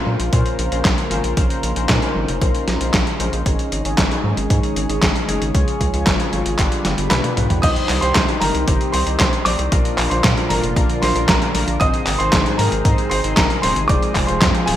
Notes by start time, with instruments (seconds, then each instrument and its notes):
Already playing: analog polysynth A#2 C#4 F4 A#4 C5, analog synth pad C#3 A#3 F4 A#4 C5
0.07 analog synth bass A#2
0.20 analog synth bass A#1, closed hi-hat
0.33 analog polysynth A#2 C#4 F4 A#4 C5, analog synth bass A#2, kick, closed hi-hat
0.46 closed hi-hat
0.59 analog synth bass A#1, closed hi-hat
0.72 analog synth bass A#1, analog polysynth A#2 C#4 F4 A#4 C5, closed hi-hat
0.85 analog synth bass A#1, kick, snare, clap, closed hi-hat
0.98 closed hi-hat
1.11 analog synth bass G#1, analog polysynth A#2 C#4 F4 A#4 C5, closed hi-hat
1.24 analog synth bass A#1, closed hi-hat
1.37 analog synth bass A#1, analog polysynth A#2 C#4 F4 A#4 C5, analog synth pad D#4, kick, closed hi-hat
1.50 closed hi-hat
1.63 analog synth bass A#1, closed hi-hat
1.76 analog synth bass A#1, analog polysynth A#2 C#4 F4 A#4 C5, closed hi-hat
1.89 analog synth bass A#2, kick, snare, clap, closed hi-hat
2.02 analog polysynth A#2 C#4 F4 A#4 C5, closed hi-hat
2.15 analog synth bass G#1
2.28 analog synth bass F1, closed hi-hat
2.41 analog synth bass A#1, analog polysynth A#2 C#4 F4 A#4 C5, kick, closed hi-hat
2.55 closed hi-hat
2.68 analog synth bass A#1, snare, closed hi-hat
2.81 analog synth bass A#1, analog polysynth A#2 C#4 F4 A#4 C5, closed hi-hat
2.94 analog synth bass A#1, kick, snare, clap, closed hi-hat
3.07 closed hi-hat
3.20 analog synth bass A#1, analog polysynth G#3 C#4 F4 A#4 C5, closed hi-hat
3.33 analog synth bass A#1, closed hi-hat
3.46 analog synth bass G#1, analog synth pad D#3 G#3 G#4, analog polysynth G#3 C#4 D#4 G#4 C#5, kick, closed hi-hat
3.59 closed hi-hat
3.72 analog synth bass G#1, closed hi-hat
3.85 analog synth bass G#1, analog polysynth G#3 C#4 D#4 G#4 C#5, closed hi-hat
3.98 analog synth bass G#1, kick, snare, clap, closed hi-hat
4.11 analog polysynth G#3 C#4 D#4 G#4 C#5, closed hi-hat
4.24 analog synth bass G#2
4.37 analog synth bass G#1, closed hi-hat
4.50 analog synth bass G#2, analog polysynth G#3 C#4 D#4 G#4 C#5, kick, closed hi-hat
4.63 closed hi-hat
4.76 analog synth bass G#1, closed hi-hat
4.89 analog synth bass G#1, analog polysynth G#3 C#4 D#4 G#4 C#5, closed hi-hat
5.02 analog synth bass G#1, kick, snare, clap, closed hi-hat
5.16 closed hi-hat
5.28 analog synth bass F#1, analog polysynth C#3 C#4 D#4 G#4 C#5, closed hi-hat
5.41 analog synth bass G#1, closed hi-hat
5.55 analog synth bass C#2, analog polysynth C#3 C#4 F4 G#4 C#5, analog synth pad F3 F4, kick, closed hi-hat
5.68 closed hi-hat
5.81 analog synth bass C#2, kick, closed hi-hat
5.94 analog synth bass C#2, analog polysynth C#3 C#4 F4 G#4 C#5, closed hi-hat
6.07 analog synth bass G#1, kick, snare, clap, closed hi-hat
6.20 analog polysynth C#3 C#4 F4 G#4 C#5, closed hi-hat
6.33 analog synth bass G#1, closed hi-hat
6.46 analog synth bass G#1, closed hi-hat
6.59 analog synth bass G1, analog synth pad D3 G3 B3 G4, analog polysynth G3 D4 F4 G4 B4, kick, clap, closed hi-hat
6.72 closed hi-hat
6.85 analog synth bass G1, analog polysynth G3 D4 F4 G4 B4, snare, closed hi-hat
6.98 analog synth bass G1, closed hi-hat
7.10 analog synth bass B1, grand piano B4 B5, snare, clap, closed hi-hat, high tom
7.24 analog polysynth G3 D4 F4 G4 B4, closed hi-hat, high tom
7.37 analog synth bass B1, closed hi-hat, mid tom
7.50 analog synth bass B1, closed hi-hat, mid tom
7.62 analog synth bass C2, analog polysynth C3 C4 D#4 G4 C5, analog synth pad C3 D#3 G3 D#4 G4, grand piano D#5 D#6, kick, closed hi-hat, crash
7.76 closed hi-hat
7.89 analog synth bass C2, clap, open hi-hat
8.01 analog synth bass C2, analog polysynth C3 C4 D#4 G4 C5, grand piano C5 C6, closed hi-hat
8.15 analog synth bass C2, kick, snare, clap, closed hi-hat
8.28 analog polysynth C3 C4 D#4 G4 C5, closed hi-hat
8.40 analog synth bass G1, grand piano A#4 A#5, open hi-hat
8.55 analog synth bass C2, closed hi-hat
8.68 analog synth bass G1, analog polysynth C3 C4 D#4 G4 C5, kick, closed hi-hat
8.81 closed hi-hat
8.92 analog synth bass C2, grand piano C5 C6, open hi-hat
9.07 analog synth bass C2, analog polysynth C3 C4 D#4 G4 C5, closed hi-hat
9.19 analog synth bass C2, grand piano C5 C6, kick, snare, clap, closed hi-hat
9.33 closed hi-hat
9.45 analog synth bass A#1, analog polysynth C4 D#4 G4 C5, grand piano D5 D6, open hi-hat
9.59 analog synth bass C2, closed hi-hat
9.72 analog synth bass A#1, analog polysynth A#2 A#3 D4 F4 A#4, analog synth pad A#2 D3 F3 D4 F4, kick, closed hi-hat
9.85 closed hi-hat
9.98 analog synth bass A#1, clap, open hi-hat
10.10 analog synth bass A#1, analog polysynth A#2 A#3 D4 F4 A#4, grand piano C5 C6, closed hi-hat
10.24 analog synth bass A#2, kick, snare, clap, closed hi-hat
10.37 analog polysynth A#2 A#3 D4 F4 A#4, closed hi-hat
10.49 analog synth bass G#1, grand piano A#4 A#5, open hi-hat
10.63 analog synth bass F1, closed hi-hat
10.76 analog synth bass A#1, analog polysynth A#2 A#3 D4 F4 A#4, kick, closed hi-hat
10.89 closed hi-hat
11.02 analog synth bass A#1, grand piano C5 C6, snare, open hi-hat
11.15 analog synth bass A#1, analog polysynth A#2 A#3 D4 F4 A#4, closed hi-hat
11.28 analog synth bass A#1, grand piano A#4 A#5, kick, snare, clap, closed hi-hat
11.42 closed hi-hat
11.55 analog synth bass A#1, analog polysynth A#3 D4 F4 A#4, open hi-hat
11.68 analog synth bass A#1, closed hi-hat
11.80 analog synth bass G#1, analog polysynth G#2 C4 D#4 G#4 C5, analog synth pad C3 D#3 G#3 D#4 G#4, grand piano D#5 D#6, kick, closed hi-hat
11.94 closed hi-hat
12.07 analog synth bass G#1, clap, open hi-hat
12.18 analog synth bass G#1, analog polysynth G#2 C4 D#4 G#4 C5, grand piano C5 C6, closed hi-hat
12.33 analog synth bass G#1, kick, snare, clap, closed hi-hat
12.46 analog polysynth G#2 C4 D#4 G#4 C5, closed hi-hat
12.58 analog synth bass G#2, grand piano A#4 A#5, open hi-hat
12.72 analog synth bass G#1, closed hi-hat
12.85 analog synth bass G#2, analog polysynth G#2 C4 D#4 G#4 C5, kick, closed hi-hat
12.98 closed hi-hat
13.10 analog synth bass G#1, grand piano C5 C6, open hi-hat
13.24 analog synth bass G#1, analog polysynth G#2 C4 D#4 G#4 C5, closed hi-hat
13.36 analog synth bass G#1, grand piano A#4 A#5, kick, snare, clap, closed hi-hat
13.50 closed hi-hat
13.62 analog synth bass D#1, analog polysynth F3 C4 D#4 G#4 C5, grand piano C5 C6, open hi-hat
13.76 analog synth bass G#1, closed hi-hat
13.88 analog synth bass F1, analog synth pad F3 F4, analog polysynth F3 C4 F4 G#4 C5, grand piano D5 D6, kick, closed hi-hat
14.03 closed hi-hat
14.15 analog synth bass F1, kick, clap, open hi-hat
14.27 analog synth bass F1, analog polysynth F3 C4 F4 G#4 C5, grand piano C5 C6, closed hi-hat
14.41 analog synth bass F2, kick, snare, clap, closed hi-hat
14.54 analog polysynth F3 C4 F4 G#4 C5, closed hi-hat
14.66 analog synth bass D#1, grand piano G#4 G#5, open hi-hat